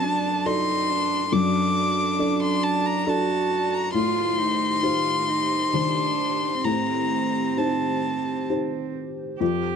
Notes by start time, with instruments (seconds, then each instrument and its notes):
Already playing: felt piano F#2 D4 A4 D5, ambient pad F#4 A4 D5, violin A5
0.03 cello D4
0.46 cello D#4, felt piano F#4 A4 D5, violin C6
0.89 cello D4
1.32 felt piano F#2, cello D4, violin D6
2.19 felt piano D4 A4 D5
2.43 violin C6
2.63 violin A5
2.86 violin A#5
3.07 felt piano D4 A4 D5, cello F#4, violin A5
3.73 violin A#5
3.93 felt piano A2, ambient pad D#3 G4 C5, cello F4, violin C6
4.38 cello D#4
4.83 felt piano D#4 G4 C5, cello F4
5.28 cello D#4
5.73 felt piano D#3 G4 C5, cello D4
6.64 felt piano A2, cello C4, violin A#5
7.57 felt piano D#4 G4 C5, violin A5
8.49 felt piano D#4 G4 C5
9.40 felt piano F2, ambient pad F4 G4 A4, cello G4